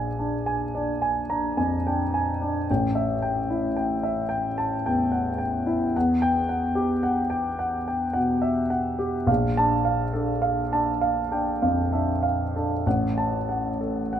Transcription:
0.00 2.64 A#1 soft
0.00 0.19 D4 soft
0.00 0.75 D5 soft
0.00 0.46 G#5 soft
0.19 0.64 D4 soft
0.46 0.91 G#5 soft
0.75 1.20 D4 soft
0.75 1.19 D5 soft
1.02 1.46 G#5 soft
1.29 1.74 D4 soft
1.29 1.58 A#5 soft
1.57 2.02 F2 soft
1.57 2.02 G#5 soft
1.86 2.30 D4 soft
1.86 2.14 G5 soft
2.14 2.58 G#5 soft
2.41 2.69 D4 soft
2.70 5.92 A1 soft
2.70 3.14 G5 soft
2.95 3.40 E5 soft
3.22 3.67 G5 soft
3.50 3.94 E4 soft
3.76 4.20 G5 soft
4.03 4.47 E5 soft
4.29 4.73 G5 soft
4.58 4.85 A5 soft
4.86 5.30 E2 soft
4.86 5.30 G5 soft
5.12 5.40 F#5 soft
5.38 5.83 G5 soft
5.67 5.95 E4 soft
5.96 9.25 E2 soft
5.96 6.39 F#5 soft
6.22 6.65 G5 medium
6.49 6.93 F#5 soft
6.75 7.20 G4 soft
7.03 7.48 F#5 soft
7.30 7.76 G5 soft
7.59 8.04 F#5 soft
7.88 8.16 G5 soft
8.13 8.60 B2 soft
8.13 8.59 F#5 soft
8.42 8.71 E5 soft
8.70 9.16 F#5 soft
8.99 9.28 G4 soft
9.27 12.80 A#1 soft
9.27 9.74 F5 soft
9.57 10.03 D4 soft
9.57 10.03 A5 medium
9.85 10.32 F5 soft
10.13 10.61 D4 soft
10.13 10.61 A4 soft
10.42 10.90 F5 soft
10.72 11.20 D4 soft
10.72 11.21 A5 soft
11.01 11.50 F5 soft
11.31 11.80 D4 soft
11.31 11.62 G5 soft
11.62 12.11 F2 soft
11.62 12.11 F5 soft
11.92 12.41 D4 soft
11.92 12.23 E5 soft
12.23 12.73 F5 soft
12.56 12.86 D4 soft
12.56 12.86 A4 soft
12.86 14.20 A1 soft
12.86 13.37 F#5 soft
13.18 13.68 A5 medium
13.49 14.00 F#5 soft
13.81 14.20 A4 soft
14.13 14.20 F#5 soft

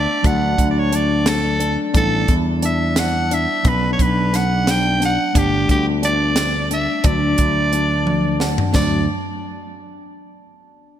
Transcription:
0.00 0.20 A3 medium
0.00 0.20 B3 medium
0.00 0.21 D4 medium
0.00 0.24 D4 medium
0.00 0.28 D5 medium
0.00 0.21 F#5 medium
0.22 0.54 D2 medium
0.22 1.90 F#3 medium
0.22 1.90 A3 medium
0.22 1.90 D4 soft
0.22 0.92 D4 medium
0.22 1.91 F#4 medium
0.22 0.70 F#5 medium
0.22 kick loud
0.22 closed hi-hat medium
0.58 1.76 D2 medium
0.58 kick medium
0.58 closed hi-hat medium
0.70 0.80 D5 medium
0.78 0.96 C#5 medium
0.92 1.59 D4 medium
0.92 1.30 D5 medium
0.92 closed hi-hat medium
1.26 1.78 A4 medium
1.26 snare loud
1.26 closed hi-hat medium
1.60 1.93 D4 medium
1.60 closed hi-hat medium
1.93 2.24 A1 loud
1.93 3.60 G3 medium
1.93 3.60 B3 medium
1.93 2.62 D4 medium
1.93 3.61 D4 soft
1.93 3.61 E4 medium
1.93 2.34 A4 medium
1.93 kick medium
1.93 closed hi-hat medium
2.28 3.46 E2 medium
2.28 kick medium
2.28 closed hi-hat soft
2.62 3.31 D4 medium
2.62 3.01 E5 medium
2.62 closed hi-hat medium
2.96 3.35 F#5 medium
2.96 snare medium
2.96 closed hi-hat medium
3.31 3.65 D4 medium
3.31 3.69 E5 medium
3.31 closed hi-hat medium
3.63 3.94 B1 medium
3.63 5.30 F#3 medium
3.63 5.31 B3 medium
3.63 5.31 C#4 soft
3.63 5.31 D4 medium
3.63 4.33 D4 medium
3.63 kick loud
3.63 closed hi-hat medium
3.68 3.92 B4 medium
3.93 4.03 C#5 medium
3.99 5.17 B1 medium
3.99 4.37 B4 medium
3.99 kick medium
3.99 closed hi-hat medium
4.33 5.00 D4 medium
4.33 4.72 F#5 medium
4.33 snare soft
4.33 closed hi-hat soft
4.67 5.02 G5 medium
4.67 snare medium
4.67 closed hi-hat medium
5.00 5.34 D4 medium
5.00 snare soft
5.00 closed hi-hat medium
5.05 5.39 F#5 loud
5.33 5.64 G1 medium
5.33 7.00 G3 medium
5.33 7.01 A3 soft
5.33 7.01 B3 medium
5.33 6.02 D4 medium
5.33 7.02 D4 medium
5.33 kick loud
5.33 closed hi-hat medium
5.38 5.70 G4 medium
5.69 6.87 D2 medium
5.69 5.86 G4 medium
5.69 kick medium
5.69 closed hi-hat medium
6.03 6.70 D4 medium
6.03 6.68 D5 medium
6.03 closed hi-hat medium
6.36 snare loud
6.36 closed hi-hat medium
6.71 7.03 D4 medium
6.71 7.07 E5 medium
6.71 closed hi-hat medium
7.04 7.34 D2 medium
7.04 8.71 F#3 medium
7.04 8.71 A3 medium
7.04 7.60 D4 medium
7.04 8.72 D4 medium
7.04 8.72 F#4 medium
7.04 8.41 D5 medium
7.04 kick loud
7.04 closed hi-hat medium
7.38 8.56 D2 medium
7.38 kick medium
7.38 closed hi-hat medium
7.73 8.29 D4 medium
7.73 closed hi-hat soft
8.07 8.39 D5 medium
8.07 high tom soft
8.40 8.69 D4 medium
8.40 8.72 F#5 medium
8.40 snare medium
8.58 floor tom medium
8.74 9.06 D2 medium
8.74 9.06 F#3 medium
8.74 9.06 A3 medium
8.74 9.06 D4 medium
8.74 9.07 D4 medium
8.74 9.06 F#4 medium
8.74 9.06 D5 medium
8.74 kick medium
8.74 snare medium
8.74 splash medium

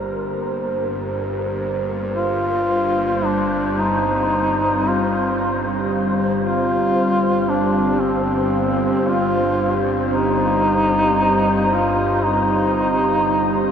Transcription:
0.00 13.71 G1 medium
0.00 13.71 G2 medium
0.00 3.32 A#3 medium
0.00 1.63 G4 medium
0.00 1.65 A#4 medium
0.00 4.48 C5 medium
1.64 13.71 G3 medium
1.64 13.71 C5 medium
2.16 3.26 F4 loud
2.65 13.71 C4 medium
2.95 13.71 F5 medium
3.25 3.81 D4 medium
3.79 4.89 D#4 medium
4.48 13.71 G4 medium
4.88 5.66 F4 medium
6.45 7.51 F4 loud
7.49 8.03 D4 medium
8.01 9.09 C4 medium
9.07 9.86 F4 loud
10.14 11.75 D#4 loud
11.74 12.26 F4 medium
12.25 13.71 D#4 loud

